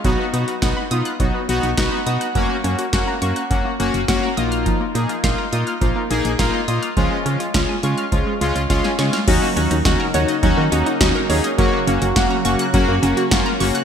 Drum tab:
CC |----------------|----------------|----------------|----------------|
HH |x-xxx-xxx-xxx-xx|x-xxx-xxx-xxx-xx|x-xxx-xxx-xxx-xx|x-xxx-xxx-xxx-xx|
SD |----o-------o---|----o-------o---|----o-------o---|----o-------oooo|
BD |o---o---o---o---|o---o---o---o---|o---o---o---o---|o---o---o---o---|

CC |x---------------|----------------|
HH |x-xxx-xxx-xxx-ox|x-xxx-xxx-xxx-ox|
SD |----o-------o---|----o-------o---|
BD |o---o---o---o---|o---o---o---o---|